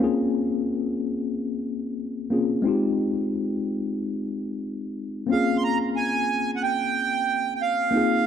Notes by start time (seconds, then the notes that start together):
Already playing: A#3
0.00 C4 C#4 F4 G#4
2.30 A#3 C4 C#4 F4 G#4
2.62 G#3 C4 D#4
2.67 F4 G4
5.27 A#3 C4 C#4
5.31 F4 G#4 F5
5.57 C6
5.64 A#5
5.96 G#5
6.56 F#5
6.63 G5
7.55 G5
7.61 F5
7.91 A#3 C4 D#4
7.95 F4 G#4